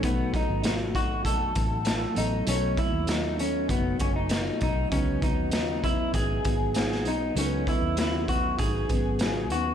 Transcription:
<<
  \new Staff \with { instrumentName = "Clean electric guitar" } { \time 4/4 \key b \mixolydian \tempo 4 = 98 b8 dis'8 dis'8 fis'8 a'4. dis'8 | cis'8 e'8 dis'8 cis'8 b8 cis'16 dis'8. dis'8 | cis'8 dis'8 dis'8 e'8 gis'4. dis'8 | cis'8 e'8 e'8 fis'8 gis'4. fis'8 | }
  \new Staff \with { instrumentName = "Tine electric piano" } { \time 4/4 \key b \mixolydian <fis b dis' a'>2.~ <fis b dis' a'>8 <fis b a' dis''>8~ | <fis b a' dis''>2.~ <fis b a' dis''>8 r8 | <fis cis' b' dis''>1 | <fis cis' a' b' dis''>2~ <fis cis' a' b' dis''>8 <fis cis' dis' b'>4. | }
  \new Staff \with { instrumentName = "Steel-string acoustic guitar" } { \time 4/4 \key b \mixolydian <b, fis a dis'>8 <fis a dis'>8 <b, fis a dis'>8 <fis a dis'>8 <b, fis a dis'>8 <fis a dis'>8 <b, fis a dis'>8 <fis a dis'>8 | <b, fis a dis'>8 <fis a>8 <b, fis a dis'>8 <fis a dis'>8 <b, fis a dis'>8 <fis a dis'>8 <b, fis a dis'>8 <fis a dis'>8 | <cis fis b dis'>8 <fis b dis'>8 <cis fis b dis'>8 <fis b>8 <cis fis b dis'>8 <fis b dis'>8 <cis fis b dis'>8 <fis b dis'>8 | <cis fis b dis'>8 <fis b>8 <cis fis b>8 <fis b dis'>8 <cis fis b dis'>8 <fis b dis'>8 <cis fis b dis'>8 <fis b dis'>8 | }
  \new Staff \with { instrumentName = "Fingered electric bass" } { \clef bass \time 4/4 \key b \mixolydian b,,8. gis,,4~ gis,,16 fis,,8 a,,4 a,,8 | b,,8. dis,4~ dis,16 fis,,8 fis,,4 b,,8 | cis,8. dis,4~ dis,16 gis,,8 gis,,4 b,,8 | cis,8. dis,4~ dis,16 gis,,8 gis,,4 dis,8 | }
  \new DrumStaff \with { instrumentName = "Drums" } \drummode { \time 4/4 <hh bd>8 <hh bd>8 <hh sn>8 <hh bd>8 <hh bd>8 <hh bd>8 <hh sn>8 hh8 | hh8 <hh bd>8 <hh sn>8 hh8 <hh bd>8 <hh bd>8 <hh sn>8 <hh bd>8 | <hh bd>8 <hh bd>8 <hh sn>8 <hh bd>8 <hh bd>8 <hh bd>8 <hh sn>16 sn16 hh8 | hh8 <hh bd>8 <hh sn>8 <hh bd>8 <hh bd>8 <hh bd>8 <hh sn>8 hh8 | }
>>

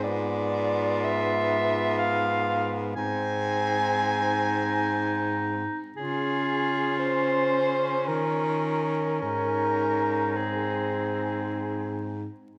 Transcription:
<<
  \new Staff \with { instrumentName = "Soprano saxophone" } { \time 3/4 \key aes \major \tempo 4 = 59 d''4 fes''4 f''8 r8 | aes''2~ aes''8 r8 | aes'4 c''4 bes'4 | bes'4 aes'4. r8 | }
  \new Staff \with { instrumentName = "Clarinet" } { \time 3/4 \key aes \major f'2. | ees'2. | f'2~ f'8 r8 | ees'2~ ees'8 r8 | }
  \new Staff \with { instrumentName = "Tenor saxophone" } { \time 3/4 \key aes \major ces'2. | c'2~ c'8 r8 | des'2.~ | des'4 c'4. r8 | }
  \new Staff \with { instrumentName = "Baritone saxophone" } { \clef bass \time 3/4 \key aes \major aes,2. | aes,2~ aes,8 r8 | des2 ees4 | aes,2~ aes,8 r8 | }
>>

